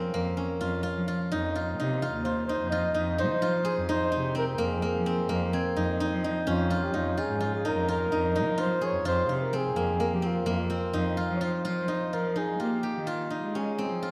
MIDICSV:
0, 0, Header, 1, 5, 480
1, 0, Start_track
1, 0, Key_signature, -4, "minor"
1, 0, Tempo, 470588
1, 1340, Time_signature, 11, 3, 24, 8
1, 14392, End_track
2, 0, Start_track
2, 0, Title_t, "Glockenspiel"
2, 0, Program_c, 0, 9
2, 2722, Note_on_c, 0, 91, 61
2, 3303, Note_off_c, 0, 91, 0
2, 5654, Note_on_c, 0, 92, 45
2, 6221, Note_off_c, 0, 92, 0
2, 6441, Note_on_c, 0, 91, 53
2, 6818, Note_off_c, 0, 91, 0
2, 14392, End_track
3, 0, Start_track
3, 0, Title_t, "Flugelhorn"
3, 0, Program_c, 1, 56
3, 0, Note_on_c, 1, 68, 78
3, 138, Note_off_c, 1, 68, 0
3, 2286, Note_on_c, 1, 72, 77
3, 2503, Note_off_c, 1, 72, 0
3, 2510, Note_on_c, 1, 72, 87
3, 2744, Note_off_c, 1, 72, 0
3, 2756, Note_on_c, 1, 75, 89
3, 3209, Note_off_c, 1, 75, 0
3, 3259, Note_on_c, 1, 72, 83
3, 3933, Note_off_c, 1, 72, 0
3, 3986, Note_on_c, 1, 72, 92
3, 4424, Note_off_c, 1, 72, 0
3, 4467, Note_on_c, 1, 70, 80
3, 4539, Note_off_c, 1, 70, 0
3, 4628, Note_on_c, 1, 70, 50
3, 4721, Note_on_c, 1, 68, 68
3, 4736, Note_off_c, 1, 70, 0
3, 5662, Note_off_c, 1, 68, 0
3, 6613, Note_on_c, 1, 65, 77
3, 6967, Note_on_c, 1, 67, 70
3, 6983, Note_off_c, 1, 65, 0
3, 7094, Note_on_c, 1, 65, 74
3, 7110, Note_off_c, 1, 67, 0
3, 7331, Note_on_c, 1, 68, 79
3, 7346, Note_off_c, 1, 65, 0
3, 7687, Note_off_c, 1, 68, 0
3, 7694, Note_on_c, 1, 68, 71
3, 7807, Note_on_c, 1, 70, 80
3, 7822, Note_off_c, 1, 68, 0
3, 8045, Note_off_c, 1, 70, 0
3, 8063, Note_on_c, 1, 70, 95
3, 8775, Note_on_c, 1, 72, 86
3, 8790, Note_off_c, 1, 70, 0
3, 9019, Note_on_c, 1, 73, 94
3, 9035, Note_off_c, 1, 72, 0
3, 9252, Note_off_c, 1, 73, 0
3, 9256, Note_on_c, 1, 72, 93
3, 9557, Note_off_c, 1, 72, 0
3, 9557, Note_on_c, 1, 72, 53
3, 9615, Note_on_c, 1, 70, 83
3, 9631, Note_off_c, 1, 72, 0
3, 9754, Note_on_c, 1, 68, 88
3, 9769, Note_off_c, 1, 70, 0
3, 10344, Note_on_c, 1, 67, 75
3, 10359, Note_off_c, 1, 68, 0
3, 10471, Note_on_c, 1, 65, 69
3, 10486, Note_off_c, 1, 67, 0
3, 10692, Note_off_c, 1, 65, 0
3, 10698, Note_on_c, 1, 65, 74
3, 11543, Note_off_c, 1, 65, 0
3, 11582, Note_on_c, 1, 73, 67
3, 11658, Note_on_c, 1, 72, 94
3, 11673, Note_off_c, 1, 73, 0
3, 12384, Note_on_c, 1, 70, 81
3, 12399, Note_off_c, 1, 72, 0
3, 12623, Note_on_c, 1, 68, 78
3, 12638, Note_off_c, 1, 70, 0
3, 12858, Note_on_c, 1, 67, 73
3, 12874, Note_off_c, 1, 68, 0
3, 13344, Note_on_c, 1, 65, 71
3, 13359, Note_off_c, 1, 67, 0
3, 13833, Note_on_c, 1, 68, 74
3, 13848, Note_off_c, 1, 65, 0
3, 14380, Note_off_c, 1, 68, 0
3, 14392, End_track
4, 0, Start_track
4, 0, Title_t, "Guzheng"
4, 0, Program_c, 2, 107
4, 0, Note_on_c, 2, 58, 57
4, 0, Note_on_c, 2, 60, 63
4, 0, Note_on_c, 2, 63, 71
4, 0, Note_on_c, 2, 65, 67
4, 0, Note_on_c, 2, 68, 74
4, 137, Note_off_c, 2, 58, 0
4, 141, Note_on_c, 2, 58, 74
4, 377, Note_on_c, 2, 61, 57
4, 438, Note_off_c, 2, 60, 0
4, 614, Note_off_c, 2, 65, 0
4, 618, Note_on_c, 2, 65, 72
4, 757, Note_off_c, 2, 63, 0
4, 800, Note_off_c, 2, 68, 0
4, 842, Note_off_c, 2, 65, 0
4, 846, Note_on_c, 2, 65, 76
4, 1095, Note_off_c, 2, 65, 0
4, 1099, Note_on_c, 2, 65, 70
4, 1342, Note_on_c, 2, 63, 84
4, 1582, Note_off_c, 2, 65, 0
4, 1586, Note_on_c, 2, 65, 64
4, 1828, Note_off_c, 2, 63, 0
4, 1832, Note_on_c, 2, 63, 67
4, 2058, Note_off_c, 2, 65, 0
4, 2062, Note_on_c, 2, 65, 70
4, 2290, Note_off_c, 2, 65, 0
4, 2294, Note_on_c, 2, 65, 59
4, 2537, Note_off_c, 2, 63, 0
4, 2542, Note_on_c, 2, 63, 63
4, 2771, Note_off_c, 2, 65, 0
4, 2775, Note_on_c, 2, 65, 76
4, 2999, Note_off_c, 2, 63, 0
4, 3003, Note_on_c, 2, 63, 60
4, 3244, Note_off_c, 2, 63, 0
4, 3248, Note_on_c, 2, 63, 71
4, 3332, Note_off_c, 2, 61, 0
4, 3421, Note_off_c, 2, 58, 0
4, 3483, Note_off_c, 2, 65, 0
4, 3487, Note_on_c, 2, 65, 78
4, 3719, Note_on_c, 2, 68, 75
4, 3961, Note_off_c, 2, 63, 0
4, 3965, Note_on_c, 2, 63, 87
4, 4196, Note_off_c, 2, 63, 0
4, 4200, Note_on_c, 2, 63, 64
4, 4435, Note_on_c, 2, 60, 70
4, 4674, Note_on_c, 2, 58, 72
4, 4914, Note_off_c, 2, 58, 0
4, 4918, Note_on_c, 2, 58, 64
4, 5159, Note_off_c, 2, 60, 0
4, 5163, Note_on_c, 2, 60, 68
4, 5392, Note_off_c, 2, 58, 0
4, 5396, Note_on_c, 2, 58, 75
4, 5638, Note_off_c, 2, 60, 0
4, 5642, Note_on_c, 2, 60, 66
4, 5875, Note_off_c, 2, 63, 0
4, 5879, Note_on_c, 2, 63, 71
4, 6038, Note_off_c, 2, 68, 0
4, 6060, Note_off_c, 2, 65, 0
4, 6119, Note_off_c, 2, 63, 0
4, 6123, Note_on_c, 2, 63, 78
4, 6364, Note_off_c, 2, 63, 0
4, 6368, Note_on_c, 2, 63, 72
4, 6597, Note_on_c, 2, 61, 86
4, 6658, Note_off_c, 2, 60, 0
4, 6838, Note_on_c, 2, 65, 71
4, 7071, Note_off_c, 2, 63, 0
4, 7075, Note_on_c, 2, 63, 66
4, 7314, Note_off_c, 2, 65, 0
4, 7318, Note_on_c, 2, 65, 70
4, 7548, Note_off_c, 2, 65, 0
4, 7552, Note_on_c, 2, 65, 68
4, 7797, Note_off_c, 2, 63, 0
4, 7801, Note_on_c, 2, 63, 70
4, 8038, Note_off_c, 2, 65, 0
4, 8042, Note_on_c, 2, 65, 75
4, 8277, Note_off_c, 2, 63, 0
4, 8281, Note_on_c, 2, 63, 64
4, 8518, Note_off_c, 2, 63, 0
4, 8523, Note_on_c, 2, 63, 72
4, 8676, Note_off_c, 2, 58, 0
4, 8744, Note_off_c, 2, 65, 0
4, 8748, Note_on_c, 2, 65, 75
4, 8991, Note_on_c, 2, 68, 73
4, 9229, Note_off_c, 2, 65, 0
4, 9233, Note_on_c, 2, 65, 88
4, 9472, Note_off_c, 2, 65, 0
4, 9476, Note_on_c, 2, 65, 63
4, 9553, Note_off_c, 2, 61, 0
4, 9720, Note_on_c, 2, 60, 67
4, 9957, Note_on_c, 2, 58, 67
4, 10194, Note_off_c, 2, 58, 0
4, 10198, Note_on_c, 2, 58, 67
4, 10422, Note_off_c, 2, 60, 0
4, 10426, Note_on_c, 2, 60, 64
4, 10665, Note_off_c, 2, 58, 0
4, 10669, Note_on_c, 2, 58, 76
4, 10907, Note_off_c, 2, 60, 0
4, 10911, Note_on_c, 2, 60, 64
4, 11149, Note_off_c, 2, 63, 0
4, 11153, Note_on_c, 2, 63, 73
4, 11310, Note_off_c, 2, 68, 0
4, 11390, Note_off_c, 2, 65, 0
4, 11394, Note_on_c, 2, 65, 73
4, 11633, Note_off_c, 2, 65, 0
4, 11637, Note_on_c, 2, 65, 72
4, 11876, Note_off_c, 2, 65, 0
4, 11880, Note_on_c, 2, 65, 77
4, 12114, Note_off_c, 2, 63, 0
4, 12118, Note_on_c, 2, 63, 65
4, 12369, Note_off_c, 2, 65, 0
4, 12373, Note_on_c, 2, 65, 59
4, 12599, Note_off_c, 2, 63, 0
4, 12603, Note_on_c, 2, 63, 66
4, 12845, Note_off_c, 2, 65, 0
4, 12849, Note_on_c, 2, 65, 62
4, 13087, Note_on_c, 2, 67, 64
4, 13325, Note_off_c, 2, 65, 0
4, 13329, Note_on_c, 2, 65, 73
4, 13566, Note_off_c, 2, 63, 0
4, 13570, Note_on_c, 2, 63, 56
4, 13822, Note_on_c, 2, 61, 63
4, 13883, Note_off_c, 2, 60, 0
4, 13949, Note_off_c, 2, 58, 0
4, 14060, Note_on_c, 2, 60, 67
4, 14121, Note_off_c, 2, 61, 0
4, 14302, Note_off_c, 2, 65, 0
4, 14306, Note_on_c, 2, 65, 67
4, 14392, Note_off_c, 2, 60, 0
4, 14392, Note_off_c, 2, 63, 0
4, 14392, Note_off_c, 2, 65, 0
4, 14392, Note_off_c, 2, 67, 0
4, 14392, End_track
5, 0, Start_track
5, 0, Title_t, "Cello"
5, 0, Program_c, 3, 42
5, 145, Note_on_c, 3, 41, 79
5, 344, Note_off_c, 3, 41, 0
5, 623, Note_on_c, 3, 41, 76
5, 822, Note_off_c, 3, 41, 0
5, 980, Note_on_c, 3, 53, 70
5, 1179, Note_off_c, 3, 53, 0
5, 1340, Note_on_c, 3, 41, 77
5, 1737, Note_off_c, 3, 41, 0
5, 1817, Note_on_c, 3, 48, 75
5, 2115, Note_off_c, 3, 48, 0
5, 2170, Note_on_c, 3, 39, 67
5, 2570, Note_off_c, 3, 39, 0
5, 2655, Note_on_c, 3, 41, 74
5, 2953, Note_off_c, 3, 41, 0
5, 3016, Note_on_c, 3, 41, 78
5, 3374, Note_on_c, 3, 53, 75
5, 3389, Note_off_c, 3, 41, 0
5, 3572, Note_off_c, 3, 53, 0
5, 3855, Note_on_c, 3, 41, 75
5, 4051, Note_off_c, 3, 41, 0
5, 4209, Note_on_c, 3, 48, 72
5, 4606, Note_off_c, 3, 48, 0
5, 4685, Note_on_c, 3, 41, 77
5, 4885, Note_off_c, 3, 41, 0
5, 5050, Note_on_c, 3, 53, 74
5, 5347, Note_off_c, 3, 53, 0
5, 5407, Note_on_c, 3, 41, 88
5, 5606, Note_off_c, 3, 41, 0
5, 5888, Note_on_c, 3, 41, 82
5, 6086, Note_off_c, 3, 41, 0
5, 6238, Note_on_c, 3, 53, 79
5, 6440, Note_off_c, 3, 53, 0
5, 6605, Note_on_c, 3, 41, 91
5, 7002, Note_off_c, 3, 41, 0
5, 7084, Note_on_c, 3, 41, 80
5, 7382, Note_off_c, 3, 41, 0
5, 7440, Note_on_c, 3, 44, 75
5, 7840, Note_off_c, 3, 44, 0
5, 7907, Note_on_c, 3, 41, 74
5, 8212, Note_off_c, 3, 41, 0
5, 8277, Note_on_c, 3, 41, 78
5, 8636, Note_on_c, 3, 53, 74
5, 8651, Note_off_c, 3, 41, 0
5, 8838, Note_off_c, 3, 53, 0
5, 9108, Note_on_c, 3, 41, 72
5, 9214, Note_off_c, 3, 41, 0
5, 9231, Note_on_c, 3, 41, 89
5, 9436, Note_off_c, 3, 41, 0
5, 9476, Note_on_c, 3, 48, 71
5, 9878, Note_off_c, 3, 48, 0
5, 9953, Note_on_c, 3, 41, 84
5, 10158, Note_off_c, 3, 41, 0
5, 10320, Note_on_c, 3, 53, 68
5, 10622, Note_off_c, 3, 53, 0
5, 10677, Note_on_c, 3, 41, 85
5, 10880, Note_off_c, 3, 41, 0
5, 11158, Note_on_c, 3, 41, 76
5, 11362, Note_off_c, 3, 41, 0
5, 11516, Note_on_c, 3, 53, 78
5, 11721, Note_off_c, 3, 53, 0
5, 11883, Note_on_c, 3, 53, 78
5, 12086, Note_off_c, 3, 53, 0
5, 12359, Note_on_c, 3, 53, 71
5, 12765, Note_off_c, 3, 53, 0
5, 12839, Note_on_c, 3, 58, 82
5, 13046, Note_off_c, 3, 58, 0
5, 13200, Note_on_c, 3, 51, 70
5, 13607, Note_off_c, 3, 51, 0
5, 13692, Note_on_c, 3, 56, 65
5, 14096, Note_off_c, 3, 56, 0
5, 14169, Note_on_c, 3, 53, 64
5, 14392, Note_off_c, 3, 53, 0
5, 14392, End_track
0, 0, End_of_file